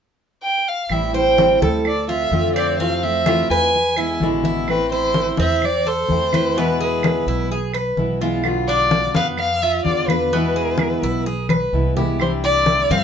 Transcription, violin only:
0, 0, Header, 1, 2, 480
1, 0, Start_track
1, 0, Key_signature, 0, "minor"
1, 0, Tempo, 470588
1, 926, Time_signature, 4, 2, 24, 8
1, 13299, End_track
2, 0, Start_track
2, 0, Title_t, "Violin"
2, 0, Program_c, 0, 40
2, 433, Note_on_c, 0, 79, 88
2, 696, Note_on_c, 0, 77, 76
2, 711, Note_off_c, 0, 79, 0
2, 936, Note_on_c, 0, 76, 82
2, 951, Note_off_c, 0, 77, 0
2, 1172, Note_off_c, 0, 76, 0
2, 1184, Note_on_c, 0, 79, 83
2, 1624, Note_off_c, 0, 79, 0
2, 1906, Note_on_c, 0, 74, 78
2, 2122, Note_off_c, 0, 74, 0
2, 2140, Note_on_c, 0, 76, 78
2, 2583, Note_off_c, 0, 76, 0
2, 2614, Note_on_c, 0, 74, 76
2, 2836, Note_off_c, 0, 74, 0
2, 2847, Note_on_c, 0, 77, 81
2, 3092, Note_on_c, 0, 76, 87
2, 3107, Note_off_c, 0, 77, 0
2, 3564, Note_off_c, 0, 76, 0
2, 3570, Note_on_c, 0, 80, 84
2, 4252, Note_off_c, 0, 80, 0
2, 4777, Note_on_c, 0, 71, 84
2, 4999, Note_off_c, 0, 71, 0
2, 5019, Note_on_c, 0, 72, 92
2, 5464, Note_off_c, 0, 72, 0
2, 5510, Note_on_c, 0, 76, 89
2, 5760, Note_on_c, 0, 74, 91
2, 5775, Note_off_c, 0, 76, 0
2, 6003, Note_on_c, 0, 72, 90
2, 6019, Note_off_c, 0, 74, 0
2, 6725, Note_on_c, 0, 71, 80
2, 6740, Note_off_c, 0, 72, 0
2, 6950, Note_off_c, 0, 71, 0
2, 6965, Note_on_c, 0, 71, 75
2, 7629, Note_off_c, 0, 71, 0
2, 8849, Note_on_c, 0, 74, 93
2, 9298, Note_off_c, 0, 74, 0
2, 9336, Note_on_c, 0, 77, 89
2, 9443, Note_off_c, 0, 77, 0
2, 9580, Note_on_c, 0, 77, 92
2, 9811, Note_on_c, 0, 76, 84
2, 9826, Note_off_c, 0, 77, 0
2, 10041, Note_off_c, 0, 76, 0
2, 10047, Note_on_c, 0, 74, 87
2, 10281, Note_on_c, 0, 71, 73
2, 10296, Note_off_c, 0, 74, 0
2, 11725, Note_off_c, 0, 71, 0
2, 12454, Note_on_c, 0, 72, 77
2, 12561, Note_off_c, 0, 72, 0
2, 12692, Note_on_c, 0, 74, 96
2, 13169, Note_on_c, 0, 77, 91
2, 13184, Note_off_c, 0, 74, 0
2, 13299, Note_off_c, 0, 77, 0
2, 13299, End_track
0, 0, End_of_file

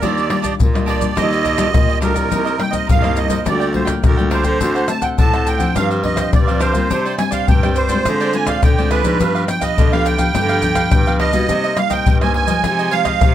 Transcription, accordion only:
0, 0, Header, 1, 2, 480
1, 0, Start_track
1, 0, Key_signature, -3, "minor"
1, 0, Tempo, 573614
1, 16, Time_signature, 4, 2, 24, 8
1, 11168, End_track
2, 0, Start_track
2, 0, Title_t, "Accordion"
2, 0, Program_c, 0, 21
2, 15, Note_on_c, 0, 74, 83
2, 462, Note_off_c, 0, 74, 0
2, 729, Note_on_c, 0, 74, 91
2, 976, Note_on_c, 0, 75, 105
2, 980, Note_off_c, 0, 74, 0
2, 1663, Note_off_c, 0, 75, 0
2, 1701, Note_on_c, 0, 70, 82
2, 2177, Note_on_c, 0, 79, 79
2, 2193, Note_off_c, 0, 70, 0
2, 2289, Note_off_c, 0, 79, 0
2, 2290, Note_on_c, 0, 75, 82
2, 2405, Note_off_c, 0, 75, 0
2, 2428, Note_on_c, 0, 77, 86
2, 2656, Note_on_c, 0, 75, 77
2, 2669, Note_off_c, 0, 77, 0
2, 2904, Note_off_c, 0, 75, 0
2, 2906, Note_on_c, 0, 74, 87
2, 3125, Note_off_c, 0, 74, 0
2, 3133, Note_on_c, 0, 72, 76
2, 3242, Note_off_c, 0, 72, 0
2, 3384, Note_on_c, 0, 70, 76
2, 3491, Note_off_c, 0, 70, 0
2, 3612, Note_on_c, 0, 72, 85
2, 4093, Note_on_c, 0, 81, 86
2, 4110, Note_off_c, 0, 72, 0
2, 4203, Note_on_c, 0, 79, 79
2, 4207, Note_off_c, 0, 81, 0
2, 4261, Note_off_c, 0, 79, 0
2, 4340, Note_on_c, 0, 81, 87
2, 4575, Note_on_c, 0, 79, 87
2, 4586, Note_off_c, 0, 81, 0
2, 4822, Note_on_c, 0, 77, 87
2, 4824, Note_off_c, 0, 79, 0
2, 4929, Note_off_c, 0, 77, 0
2, 5060, Note_on_c, 0, 75, 87
2, 5283, Note_off_c, 0, 75, 0
2, 5302, Note_on_c, 0, 74, 81
2, 5524, Note_off_c, 0, 74, 0
2, 5535, Note_on_c, 0, 72, 89
2, 5984, Note_off_c, 0, 72, 0
2, 6010, Note_on_c, 0, 80, 87
2, 6125, Note_on_c, 0, 77, 82
2, 6126, Note_off_c, 0, 80, 0
2, 6256, Note_off_c, 0, 77, 0
2, 6256, Note_on_c, 0, 79, 85
2, 6494, Note_on_c, 0, 72, 85
2, 6505, Note_off_c, 0, 79, 0
2, 6980, Note_on_c, 0, 80, 88
2, 6991, Note_off_c, 0, 72, 0
2, 7092, Note_on_c, 0, 77, 90
2, 7104, Note_off_c, 0, 80, 0
2, 7207, Note_off_c, 0, 77, 0
2, 7225, Note_on_c, 0, 79, 85
2, 7446, Note_off_c, 0, 79, 0
2, 7454, Note_on_c, 0, 71, 89
2, 7904, Note_off_c, 0, 71, 0
2, 7939, Note_on_c, 0, 79, 91
2, 8048, Note_on_c, 0, 75, 86
2, 8063, Note_off_c, 0, 79, 0
2, 8302, Note_off_c, 0, 75, 0
2, 8308, Note_on_c, 0, 77, 91
2, 8415, Note_on_c, 0, 79, 103
2, 8428, Note_off_c, 0, 77, 0
2, 9344, Note_off_c, 0, 79, 0
2, 9368, Note_on_c, 0, 75, 104
2, 9850, Note_on_c, 0, 77, 94
2, 9868, Note_off_c, 0, 75, 0
2, 9963, Note_on_c, 0, 79, 94
2, 9979, Note_off_c, 0, 77, 0
2, 10193, Note_off_c, 0, 79, 0
2, 10225, Note_on_c, 0, 80, 97
2, 10317, Note_off_c, 0, 80, 0
2, 10329, Note_on_c, 0, 80, 100
2, 10808, Note_on_c, 0, 77, 105
2, 10828, Note_off_c, 0, 80, 0
2, 11168, Note_off_c, 0, 77, 0
2, 11168, End_track
0, 0, End_of_file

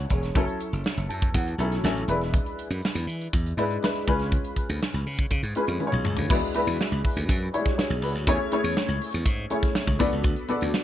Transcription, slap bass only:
0, 0, Header, 1, 2, 480
1, 0, Start_track
1, 0, Tempo, 495050
1, 338, Time_signature, 4, 2, 24, 8
1, 10507, End_track
2, 0, Start_track
2, 0, Title_t, "Slap bass"
2, 0, Program_c, 0, 36
2, 101, Note_on_c, 0, 28, 86
2, 287, Note_off_c, 0, 28, 0
2, 342, Note_on_c, 0, 30, 103
2, 434, Note_off_c, 0, 30, 0
2, 706, Note_on_c, 0, 30, 85
2, 797, Note_off_c, 0, 30, 0
2, 943, Note_on_c, 0, 30, 99
2, 1036, Note_off_c, 0, 30, 0
2, 1064, Note_on_c, 0, 42, 92
2, 1250, Note_off_c, 0, 42, 0
2, 1305, Note_on_c, 0, 40, 80
2, 1491, Note_off_c, 0, 40, 0
2, 1533, Note_on_c, 0, 35, 79
2, 1724, Note_off_c, 0, 35, 0
2, 1780, Note_on_c, 0, 33, 88
2, 1969, Note_off_c, 0, 33, 0
2, 2015, Note_on_c, 0, 28, 100
2, 2300, Note_off_c, 0, 28, 0
2, 2621, Note_on_c, 0, 42, 90
2, 2717, Note_off_c, 0, 42, 0
2, 2862, Note_on_c, 0, 40, 102
2, 2957, Note_off_c, 0, 40, 0
2, 2976, Note_on_c, 0, 52, 81
2, 3168, Note_off_c, 0, 52, 0
2, 3229, Note_on_c, 0, 40, 91
2, 3416, Note_off_c, 0, 40, 0
2, 3463, Note_on_c, 0, 44, 91
2, 3652, Note_off_c, 0, 44, 0
2, 3950, Note_on_c, 0, 37, 97
2, 4230, Note_off_c, 0, 37, 0
2, 4552, Note_on_c, 0, 38, 98
2, 4645, Note_off_c, 0, 38, 0
2, 4790, Note_on_c, 0, 37, 109
2, 4883, Note_off_c, 0, 37, 0
2, 4910, Note_on_c, 0, 49, 93
2, 5097, Note_off_c, 0, 49, 0
2, 5146, Note_on_c, 0, 49, 98
2, 5241, Note_off_c, 0, 49, 0
2, 5263, Note_on_c, 0, 44, 104
2, 5359, Note_off_c, 0, 44, 0
2, 5506, Note_on_c, 0, 41, 92
2, 5601, Note_off_c, 0, 41, 0
2, 5749, Note_on_c, 0, 35, 82
2, 5876, Note_off_c, 0, 35, 0
2, 5876, Note_on_c, 0, 37, 90
2, 5967, Note_off_c, 0, 37, 0
2, 5992, Note_on_c, 0, 38, 82
2, 6085, Note_off_c, 0, 38, 0
2, 6111, Note_on_c, 0, 40, 100
2, 6204, Note_off_c, 0, 40, 0
2, 6467, Note_on_c, 0, 40, 86
2, 6561, Note_off_c, 0, 40, 0
2, 6707, Note_on_c, 0, 37, 92
2, 6801, Note_off_c, 0, 37, 0
2, 6947, Note_on_c, 0, 38, 79
2, 7040, Note_off_c, 0, 38, 0
2, 7064, Note_on_c, 0, 42, 91
2, 7252, Note_off_c, 0, 42, 0
2, 7661, Note_on_c, 0, 35, 83
2, 7774, Note_off_c, 0, 35, 0
2, 7774, Note_on_c, 0, 37, 95
2, 7903, Note_off_c, 0, 37, 0
2, 7903, Note_on_c, 0, 38, 83
2, 7997, Note_off_c, 0, 38, 0
2, 8019, Note_on_c, 0, 40, 111
2, 8114, Note_off_c, 0, 40, 0
2, 8377, Note_on_c, 0, 40, 91
2, 8472, Note_off_c, 0, 40, 0
2, 8614, Note_on_c, 0, 37, 101
2, 8710, Note_off_c, 0, 37, 0
2, 8863, Note_on_c, 0, 40, 89
2, 8955, Note_off_c, 0, 40, 0
2, 8972, Note_on_c, 0, 44, 93
2, 9161, Note_off_c, 0, 44, 0
2, 9572, Note_on_c, 0, 37, 82
2, 9667, Note_off_c, 0, 37, 0
2, 9696, Note_on_c, 0, 38, 104
2, 9789, Note_off_c, 0, 38, 0
2, 9816, Note_on_c, 0, 37, 98
2, 9929, Note_off_c, 0, 37, 0
2, 9929, Note_on_c, 0, 38, 105
2, 10025, Note_off_c, 0, 38, 0
2, 10297, Note_on_c, 0, 38, 84
2, 10389, Note_off_c, 0, 38, 0
2, 10507, End_track
0, 0, End_of_file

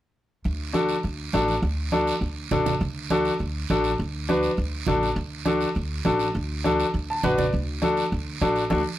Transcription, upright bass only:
0, 0, Header, 1, 2, 480
1, 0, Start_track
1, 0, Key_signature, 2, "major"
1, 0, Tempo, 294985
1, 727, Time_signature, 4, 2, 24, 8
1, 14627, End_track
2, 0, Start_track
2, 0, Title_t, "Upright bass"
2, 0, Program_c, 0, 32
2, 733, Note_on_c, 0, 38, 95
2, 1500, Note_off_c, 0, 38, 0
2, 1689, Note_on_c, 0, 38, 86
2, 2073, Note_off_c, 0, 38, 0
2, 2176, Note_on_c, 0, 33, 99
2, 2558, Note_off_c, 0, 33, 0
2, 2641, Note_on_c, 0, 38, 94
2, 3414, Note_off_c, 0, 38, 0
2, 3598, Note_on_c, 0, 38, 90
2, 3987, Note_off_c, 0, 38, 0
2, 4087, Note_on_c, 0, 33, 92
2, 4473, Note_off_c, 0, 33, 0
2, 4569, Note_on_c, 0, 38, 100
2, 5339, Note_off_c, 0, 38, 0
2, 5532, Note_on_c, 0, 38, 85
2, 5916, Note_off_c, 0, 38, 0
2, 6018, Note_on_c, 0, 33, 89
2, 6400, Note_off_c, 0, 33, 0
2, 6498, Note_on_c, 0, 38, 98
2, 7264, Note_off_c, 0, 38, 0
2, 7450, Note_on_c, 0, 38, 93
2, 7835, Note_off_c, 0, 38, 0
2, 7935, Note_on_c, 0, 33, 90
2, 8318, Note_off_c, 0, 33, 0
2, 8396, Note_on_c, 0, 38, 101
2, 9170, Note_off_c, 0, 38, 0
2, 9373, Note_on_c, 0, 38, 94
2, 9756, Note_off_c, 0, 38, 0
2, 9851, Note_on_c, 0, 33, 91
2, 10235, Note_off_c, 0, 33, 0
2, 10331, Note_on_c, 0, 38, 96
2, 11098, Note_off_c, 0, 38, 0
2, 11291, Note_on_c, 0, 38, 90
2, 11674, Note_off_c, 0, 38, 0
2, 11782, Note_on_c, 0, 33, 95
2, 12160, Note_off_c, 0, 33, 0
2, 12260, Note_on_c, 0, 38, 99
2, 13022, Note_off_c, 0, 38, 0
2, 13214, Note_on_c, 0, 38, 95
2, 13594, Note_off_c, 0, 38, 0
2, 13690, Note_on_c, 0, 33, 89
2, 14072, Note_off_c, 0, 33, 0
2, 14188, Note_on_c, 0, 38, 105
2, 14355, Note_off_c, 0, 38, 0
2, 14627, End_track
0, 0, End_of_file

